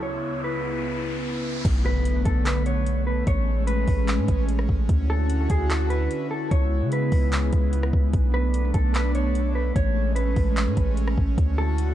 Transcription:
0.00 1.63 C#2 medium
0.00 1.62 C#3 medium
0.00 1.63 B3 medium
0.00 1.62 E4 medium
0.00 0.41 C#5 medium
0.00 riser medium
0.44 1.61 B4 medium
1.65 2.23 B1 loud
1.65 3.25 D3 medium
1.65 4.86 A3 medium
1.65 3.25 B3 medium
1.65 kick loud
1.65 closed hi-hat medium
1.65 crash loud
1.65 impact medium
1.86 2.23 B4 medium
2.05 closed hi-hat medium
2.25 3.23 B1 loud
2.25 2.45 A4 medium
2.25 kick loud
2.25 closed hi-hat medium
2.46 2.66 B4 medium
2.46 clap loud
2.46 closed hi-hat medium
2.66 3.04 C#5 medium
2.66 closed hi-hat medium
2.86 closed hi-hat medium
3.07 3.26 B4 medium
3.27 3.85 A1 loud
3.27 4.88 G#3 medium
3.27 6.48 C#4 medium
3.27 3.65 C#5 loud
3.27 kick loud
3.27 closed hi-hat medium
3.67 4.44 B4 medium
3.67 closed hi-hat medium
3.87 4.20 A1 loud
3.87 kick loud
3.87 open hi-hat medium
4.08 clap loud
4.08 closed hi-hat medium
4.18 4.28 A2 loud
4.28 4.67 A1 loud
4.28 kick loud
4.28 closed hi-hat medium
4.49 closed hi-hat medium
4.59 cross-stick medium
4.69 4.88 A1 loud
4.69 kick medium
4.89 5.48 D2 loud
4.89 6.50 D3 medium
4.89 8.10 E4 medium
4.89 6.50 F#4 medium
4.89 kick loud
4.89 closed hi-hat medium
5.10 5.48 A4 medium
5.30 closed hi-hat medium
5.50 6.08 D2 loud
5.50 5.70 G#4 medium
5.50 kick loud
5.50 closed hi-hat medium
5.70 5.90 A4 medium
5.70 clap loud
5.70 closed hi-hat medium
5.90 6.28 B4 medium
5.90 closed hi-hat medium
6.11 closed hi-hat medium
6.31 6.50 A4 medium
6.51 6.83 C#2 loud
6.51 8.12 C#3 medium
6.51 8.12 G#3 medium
6.51 9.72 B3 medium
6.51 6.89 C#5 medium
6.51 kick loud
6.51 closed hi-hat medium
6.82 7.11 C#3 loud
6.92 8.10 B4 medium
6.92 closed hi-hat medium
7.12 7.51 C#2 loud
7.12 kick loud
7.12 open hi-hat medium
7.32 clap loud
7.32 closed hi-hat medium
7.53 7.92 C#2 loud
7.53 kick loud
7.53 closed hi-hat medium
7.73 closed hi-hat medium
7.83 cross-stick loud
7.93 8.13 C#2 loud
7.93 kick loud
8.13 8.72 B1 loud
8.13 11.35 A3 medium
8.13 9.74 D4 medium
8.13 kick loud
8.13 closed hi-hat medium
8.34 8.72 B4 medium
8.54 closed hi-hat medium
8.74 9.72 B1 loud
8.74 8.93 A4 medium
8.74 kick loud
8.74 closed hi-hat medium
8.95 9.14 B4 medium
8.95 clap loud
8.95 closed hi-hat medium
9.15 9.53 C#5 medium
9.15 closed hi-hat medium
9.35 closed hi-hat medium
9.55 9.75 B4 medium
9.76 10.34 A1 loud
9.76 11.36 G#3 medium
9.76 11.94 C#4 medium
9.76 10.14 C#5 loud
9.76 kick loud
9.76 closed hi-hat medium
10.16 10.93 B4 medium
10.16 closed hi-hat medium
10.36 10.68 A1 loud
10.36 kick loud
10.36 open hi-hat medium
10.57 clap loud
10.57 closed hi-hat medium
10.67 10.77 A2 loud
10.77 11.16 A1 loud
10.77 kick loud
10.77 closed hi-hat medium
10.97 closed hi-hat medium
11.08 cross-stick loud
11.18 11.37 A1 loud
11.18 kick loud
11.38 11.94 D2 loud
11.38 11.94 D3 medium
11.38 11.94 E4 medium
11.38 11.94 F#4 medium
11.38 kick loud
11.38 closed hi-hat medium
11.58 11.94 A4 medium
11.78 closed hi-hat medium

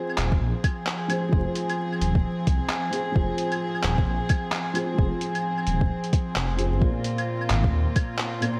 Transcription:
0.00 1.05 F3 medium
0.00 6.79 F3 medium
0.00 8.60 C4 medium
0.00 1.06 F4 medium
0.00 1.08 G#4 medium
0.00 6.78 G#4 medium
0.00 1.09 C5 medium
0.10 claves soft
0.18 0.39 D#1 medium
0.18 clap medium
0.18 closed hi-hat medium
0.32 kick medium
0.41 0.53 A#1 medium
0.64 kick loud
0.64 closed hi-hat medium
0.64 claves medium
0.87 clap loud
1.08 1.27 F3 medium
1.08 1.30 F4 medium
1.08 1.31 G#4 medium
1.08 1.31 C5 medium
1.08 closed hi-hat medium
1.08 claves medium
1.29 1.45 F1 loud
1.29 2.89 F3 medium
1.29 2.90 F4 medium
1.29 kick loud
1.34 2.91 G#4 medium
1.34 2.93 C5 medium
1.55 closed hi-hat medium
1.70 closed hi-hat soft
1.70 claves soft
1.92 claves soft
2.01 2.23 D#1 medium
2.01 closed hi-hat medium
2.15 kick loud
2.47 2.60 C2 medium
2.47 kick loud
2.47 closed hi-hat medium
2.69 clap loud
2.91 3.10 F3 medium
2.91 3.13 F4 medium
2.91 3.14 G#4 medium
2.91 closed hi-hat medium
2.95 3.14 C5 medium
3.12 3.28 F1 loud
3.12 4.72 F3 medium
3.12 4.73 F4 medium
3.12 kick loud
3.17 4.74 G#4 medium
3.17 4.76 C5 medium
3.38 closed hi-hat medium
3.52 closed hi-hat soft
3.52 claves soft
3.75 claves soft
3.84 4.06 D#1 medium
3.84 clap loud
3.84 closed hi-hat medium
3.98 kick loud
4.07 4.20 A#1 medium
4.29 kick loud
4.29 closed hi-hat medium
4.29 claves medium
4.52 clap loud
4.73 4.93 F3 medium
4.73 4.96 F4 medium
4.73 4.97 G#4 medium
4.73 closed hi-hat medium
4.73 claves medium
4.78 4.97 C5 medium
4.94 6.55 F3 medium
4.94 6.56 F4 medium
4.98 5.11 F1 medium
4.98 6.57 G#4 medium
4.98 6.59 C5 medium
4.98 kick loud
5.21 closed hi-hat soft
5.35 closed hi-hat soft
5.35 claves soft
5.58 claves soft
5.67 5.89 D#1 medium
5.67 closed hi-hat medium
5.81 kick loud
6.04 closed hi-hat soft
6.13 kick loud
6.13 closed hi-hat medium
6.36 6.74 F1 medium
6.36 clap loud
6.36 closed hi-hat soft
6.56 6.78 F3 medium
6.56 6.79 F4 medium
6.56 6.80 G#4 medium
6.56 closed hi-hat medium
6.61 6.81 C5 medium
6.72 6.81 G#1 loud
6.78 6.94 A#1 loud
6.78 8.38 A#2 medium
6.78 8.39 A#3 medium
6.78 8.60 A#3 medium
6.78 8.60 F4 medium
6.78 kick loud
6.83 8.41 F4 medium
6.83 8.42 C5 medium
7.04 closed hi-hat soft
7.18 closed hi-hat soft
7.18 claves soft
7.41 claves soft
7.50 7.72 G#1 medium
7.50 clap loud
7.50 closed hi-hat soft
7.64 kick loud
7.73 7.86 D#2 medium
7.96 kick loud
7.96 closed hi-hat soft
7.96 claves medium
8.19 clap loud
8.40 8.59 A#2 medium
8.40 8.60 A#3 medium
8.40 8.60 F4 medium
8.40 8.60 C5 medium
8.40 closed hi-hat medium
8.40 claves medium

